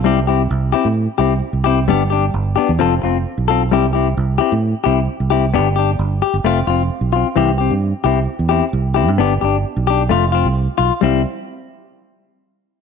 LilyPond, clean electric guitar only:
\new Staff \with { instrumentName = "Clean electric guitar" } { \time 4/4 \key c \major \tempo 4 = 131 <g c' e' g'>8 <c' e' g'>8 r8 <c' e' g'>8 r8 <c' e' g'>8 r8 <c' e' g'>8 | <g b d' g'>8 <d' g'>8 r8 <b d' g'>8 <f c' f' a'>8 <c' f'>8 r8 <c' f' a'>8 | <g c' e' g'>8 <c' e' g'>8 r8 <c' e' g'>8 r8 <c' e' g'>8 r8 <c' e' g'>8 | <b d' g'>8 <d' g'>8 r8 g'8 <a c' f'>8 <c' f'>8 r8 <c' f'>8 |
<e c' e' g'>8 <c' g'>8 r8 <c' e' g'>8 r8 <c' e' g'>8 r8 <c' e' g'>8 | <b d' g'>8 <d' g'>8 r8 <d' g'>8 <a f'>8 <c' f'>8 r8 f'8 | <g c' e'>8 r2. r8 | }